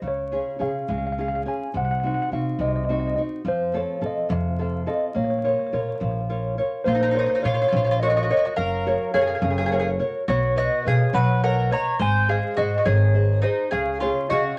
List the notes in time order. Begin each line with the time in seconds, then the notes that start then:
0.02 C#2 C#3
0.08 C#5
0.32 C#4 F4 G#4
0.59 C#3 C#4 F4 G#4 F5
0.88 C#2 G#3 F5
0.98 F5
1.07 F5
1.12 F5
1.18 C#4 F4 G#4 F5
1.28 F5
1.35 F5
1.45 C#4 F4 G#4 G#5
1.74 C2 C3 F#5
1.85 F#5
1.91 F#5
2.00 C4 D#4 F#4 F#5
2.07 F#5
2.14 F#5
2.22 F#5
2.32 C3 C4 D#4 F#4 F5
2.59 C2 C3 D#5
2.68 D#5
2.76 D#5
2.85 C4 D#5
2.89 D#4 F#4 D#5
3.00 D#5
3.07 D#5
3.16 C4 D#4 F#4 D#5
3.45 F2 F3 C5
3.73 C4 F4 A4 C#5
4.01 F3 C4 F4 A4
4.06 D#5
4.29 F2 C3 F5
4.58 C4 F4 A4 F5
4.86 C4 F4 A4 D#5
5.14 A#1 A#3 C#5
5.24 C#5
5.30 C#5
5.39 C#5
5.44 F4 A#4 C#5
5.53 C#5
5.59 C#5
5.67 C#5
5.73 A#2 F4 A#4 C#5
5.81 C#5
5.89 C#5
5.96 C#5
6.00 A#1 F3 C#5
6.11 C#5
6.29 F4 A#4 C#5
6.58 F4 A#4 C#5
6.84 A#1 A#3 F4 C5
6.93 D#4 C5
7.01 D#4 C5
7.08 D#4 C5
7.15 F4 A#4 C5 C#5
7.19 D#4
7.24 D#4 C5
7.30 C5
7.35 D#4
7.42 A#2 F4 A#4 C#5
7.49 C#5
7.54 F4 C#5
7.62 F4 C#5
7.68 F3 F4 C#5
7.73 A#1 F4
7.78 C#5
7.84 F4 C#5
7.91 F4
8.00 F4 F#4 A#4 C#5 D#5
8.08 F#4 D#5
8.17 F#4 D#5
8.23 F#4 D#5
8.29 F4 F#4 A#4 C#5 D#5
8.37 F#4 D#5
8.45 F#4 D#5
8.56 F#1 F#3 A#4 F5
8.86 F#4 A#4 C#5
9.14 F#2 F#4 G#4 A#4 C#5 F5
9.21 G#4 F5
9.27 G#4 F5
9.35 G#4 F5
9.41 F#1 C#3 G#4 F5
9.50 G#4 F5
9.58 G#4 F5
9.66 G#4 F5
9.71 F#4 G#4 A#4 C#5
9.76 F5
9.80 G#4 F5
9.99 F#4 A#4 C#5
10.28 B1 B3 F#4 C#5
10.56 F#4 B4 C#5 D#5
10.85 B2 G#4 B4 C#5 D#5 F5
11.13 B1 F#3 B4 F#5
11.44 A#4 B4 C#5 D#5 F#5
11.71 B4 C#5 D#5 A#5
11.99 G#1 G#3 C5 G#5
12.28 G#4 C5 D#5 F5
12.56 G#2 F#4 G#4 C5 D#5
12.78 F#4 D#5
12.85 G#1 D#3 G#4 C#5
13.14 G#4 C5 D#5
13.42 D#4 G#4 C5 D#5
13.71 C#2 C#3 G#4 F5
14.00 C#4 F4 G#4 C#5
14.30 C#3 C#4 F4 F#4 G#4 D#5